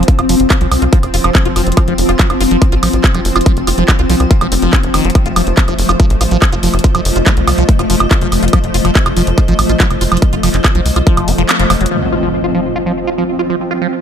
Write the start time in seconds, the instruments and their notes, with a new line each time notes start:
Already playing: synth texture F3 C4, ambient pad F4 C5 C6
0.03 closed hi-hat
0.08 kick, closed hi-hat
0.19 analog synth bass F1, acid bass F4, closed hi-hat, high woodblock
0.29 analog synth bass F1, acid bass F3, open hi-hat
0.40 analog synth bass F1, closed hi-hat
0.50 acid bass F4, kick, clap, closed hi-hat, high woodblock
0.61 analog synth bass C2, acid bass F3, closed hi-hat
0.71 analog synth bass C2, open hi-hat, high woodblock
0.82 analog synth bass C2, acid bass F4, closed hi-hat
0.93 acid bass F3, kick, closed hi-hat
1.03 analog synth bass F1, closed hi-hat, high woodblock
1.14 analog synth bass F1, acid bass F4, open hi-hat
1.24 analog synth bass F1, acid bass F3, closed hi-hat, high woodblock
1.35 kick, clap, closed hi-hat
1.45 analog synth bass F1, acid bass F4, closed hi-hat
1.56 analog synth bass F1, acid bass F3, open hi-hat, high woodblock
1.67 analog synth bass F1, closed hi-hat
1.72 closed hi-hat
1.77 acid bass F4, kick, closed hi-hat, high woodblock
1.88 analog synth bass F1, acid bass F3, closed hi-hat
1.98 analog synth bass F1, open hi-hat
2.09 analog synth bass F1, acid bass F4, closed hi-hat, high woodblock
2.19 acid bass F3, kick, clap, closed hi-hat
2.30 analog synth bass F1, closed hi-hat, high woodblock
2.40 analog synth bass F1, acid bass F4, open hi-hat
2.51 analog synth bass F1, acid bass F3, closed hi-hat
2.62 kick, closed hi-hat, high woodblock
2.72 analog synth bass A1, acid bass F4, closed hi-hat
2.83 analog synth bass A1, acid bass F3, open hi-hat, high woodblock
2.93 analog synth bass A1, closed hi-hat
3.04 acid bass F4, kick, clap, closed hi-hat
3.14 analog synth bass F1, acid bass F3, closed hi-hat, high woodblock
3.25 analog synth bass F1, open hi-hat
3.36 analog synth bass F1, acid bass F4, closed hi-hat, high woodblock
3.41 closed hi-hat
3.46 acid bass F3, kick, closed hi-hat
3.57 analog synth bass F1, closed hi-hat
3.67 analog synth bass F1, acid bass F4, open hi-hat, high woodblock
3.78 analog synth bass F1, acid bass F3, closed hi-hat
3.88 kick, clap, closed hi-hat, high woodblock
3.99 analog synth bass C2, acid bass F4, closed hi-hat
4.10 analog synth bass C2, acid bass F3, open hi-hat
4.20 analog synth bass C2, closed hi-hat, high woodblock
4.31 acid bass F4, kick, closed hi-hat
4.41 analog synth bass F1, acid bass F3, closed hi-hat, high woodblock
4.52 analog synth bass F1, acid bass C4, open hi-hat
4.62 analog synth bass F1, acid bass F3, closed hi-hat
4.73 acid bass F#4, kick, clap, closed hi-hat, high woodblock
4.83 analog synth bass F1, closed hi-hat
4.94 analog synth bass F1, acid bass D#3, open hi-hat, high woodblock
5.05 analog synth bass F1, acid bass F#3, closed hi-hat
5.10 closed hi-hat
5.15 synth texture A3, kick, closed hi-hat, high woodblock
5.26 analog synth bass F1, acid bass F4, closed hi-hat
5.36 analog synth bass F1, acid bass F3, open hi-hat, high woodblock
5.47 analog synth bass F1, ambient pad D#5, closed hi-hat
5.57 acid bass F4, kick, clap, closed hi-hat
5.68 analog synth bass F1, acid bass F3, closed hi-hat, high woodblock
5.78 analog synth bass F1, open hi-hat
5.89 analog synth bass F1, acid bass F4, closed hi-hat, high woodblock
6.00 acid bass F3, kick, closed hi-hat
6.10 analog synth bass A1, closed hi-hat
6.21 analog synth bass A1, acid bass F4, open hi-hat, high woodblock
6.31 analog synth bass A1, acid bass F3, closed hi-hat
6.42 kick, clap, closed hi-hat, high woodblock
6.52 analog synth bass F1, acid bass F4, closed hi-hat
6.63 analog synth bass F1, acid bass F3, open hi-hat
6.74 analog synth bass F1, closed hi-hat, high woodblock
6.79 closed hi-hat
6.84 acid bass F4, kick, closed hi-hat
6.95 analog synth bass F1, acid bass F3, closed hi-hat, high woodblock
7.05 analog synth bass F1, open hi-hat
7.16 analog synth bass F1, acid bass F4, closed hi-hat
7.26 acid bass F3, kick, clap, closed hi-hat, high woodblock
7.37 analog synth bass C2, closed hi-hat
7.47 analog synth bass C2, acid bass F4, open hi-hat, high woodblock
7.58 analog synth bass C2, acid bass F3, closed hi-hat
7.69 kick, closed hi-hat
7.79 analog synth bass F1, acid bass F4, closed hi-hat, high woodblock
7.90 analog synth bass F1, acid bass F3, open hi-hat
8.00 analog synth bass F1, closed hi-hat, high woodblock
8.11 acid bass F4, kick, clap, closed hi-hat
8.21 analog synth bass F1, acid bass F3, closed hi-hat
8.32 analog synth bass F1, open hi-hat, high woodblock
8.43 analog synth bass F1, acid bass F4, closed hi-hat
8.48 closed hi-hat
8.53 acid bass F3, kick, closed hi-hat, high woodblock
8.64 analog synth bass F1, closed hi-hat
8.74 analog synth bass F1, acid bass F4, open hi-hat
8.85 analog synth bass F1, acid bass F3, closed hi-hat, high woodblock
8.95 kick, clap, closed hi-hat
9.06 analog synth bass F1, acid bass F4, closed hi-hat, high woodblock
9.17 analog synth bass F1, acid bass F3, open hi-hat
9.27 analog synth bass F1, closed hi-hat
9.38 acid bass F4, kick, closed hi-hat, high woodblock
9.48 analog synth bass A1, acid bass F3, closed hi-hat
9.59 analog synth bass A1, open hi-hat, high woodblock
9.69 analog synth bass A1, acid bass F4, closed hi-hat
9.80 acid bass F3, kick, clap, closed hi-hat
9.91 analog synth bass F1, closed hi-hat, high woodblock
10.01 analog synth bass F1, acid bass F4, open hi-hat
10.12 analog synth bass F1, acid bass F3, closed hi-hat, high woodblock
10.17 closed hi-hat
10.22 kick, closed hi-hat
10.33 analog synth bass F1, acid bass F4, closed hi-hat
10.43 analog synth bass F1, acid bass F3, open hi-hat, high woodblock
10.54 analog synth bass F1, clap, closed hi-hat
10.64 acid bass F4, kick, clap, closed hi-hat, high woodblock
10.75 analog synth bass C2, acid bass F3, closed hi-hat
10.86 analog synth bass C2, open hi-hat
10.96 analog synth bass C2, acid bass F4, closed hi-hat, high woodblock
11.07 acid bass F3, kick, closed hi-hat
11.17 analog synth bass F1, closed hi-hat, high woodblock
11.28 analog synth bass F1, acid bass C4, open hi-hat
11.38 analog synth bass F1, acid bass F3, closed hi-hat
11.49 clap, closed hi-hat, high woodblock
11.60 analog synth bass F1, acid bass F3, closed hi-hat
11.70 analog synth bass F1, acid bass F3, open hi-hat, high woodblock
11.81 analog synth bass F1, acid bass F#3, closed hi-hat
11.86 closed hi-hat
11.91 synth texture F3 C4, acid bass F3, ambient pad F4, impact
12.12 acid bass F4
12.23 acid bass F3, ambient pad C5
12.44 acid bass F4
12.55 acid bass F3
12.76 acid bass F4, ambient pad C6
12.86 acid bass F3
13.07 acid bass F4
13.18 acid bass F3
13.39 acid bass F4
13.50 acid bass F3
13.71 acid bass F4
13.81 acid bass F3